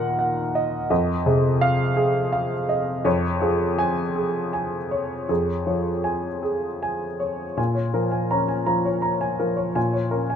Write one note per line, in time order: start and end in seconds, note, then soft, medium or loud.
0.00 0.86 D#2 medium
0.00 0.93 A#2 soft
0.00 0.92 A#4 medium
0.00 0.55 D#5 medium
0.00 0.19 F#5 medium
0.19 0.76 F#5 medium
0.55 0.89 D#5 medium
0.90 3.01 F2 medium
0.90 1.47 D#5 medium
1.26 1.83 C3 soft
1.26 1.83 G#4 medium
1.61 2.19 F5 medium
1.97 2.54 G#4 medium
2.32 2.90 F5 medium
2.69 3.05 D#5 medium
3.05 5.25 F2 medium
3.05 3.64 C#5 medium
3.41 4.01 F3 soft
3.41 4.01 G#4 medium
3.79 4.38 G#5 medium
4.16 4.76 G#4 soft
4.53 5.14 G#5 medium
4.91 5.52 C#5 soft
5.29 7.53 F2 medium
5.29 5.90 G#4 soft
5.67 6.28 F3 soft
5.67 6.28 C#5 soft
6.04 6.66 G#5 soft
6.43 7.04 G#4 soft
6.83 7.43 G#5 soft
7.20 7.58 C#5 soft
7.57 9.72 A#2 medium
7.57 7.87 G#5 soft
7.75 8.05 C#5 soft
7.94 8.53 F3 soft
7.94 8.24 A#4 soft
8.11 8.41 G#5 soft
8.31 8.89 C#4 soft
8.31 8.49 A#5 medium
8.48 8.78 G#5 soft
8.66 9.25 F3 soft
8.66 8.96 A#5 soft
8.85 9.15 C#5 soft
9.02 9.32 A#5 soft
9.21 9.50 G#5 soft
9.39 9.98 F3 soft
9.39 9.69 A#4 soft
9.57 9.86 C#5 soft
9.75 10.36 A#2 soft
9.75 10.05 G#5 soft
9.93 10.23 C#5 soft
10.11 10.36 C#4 soft
10.11 10.36 A#4 soft
10.30 10.36 G#5 soft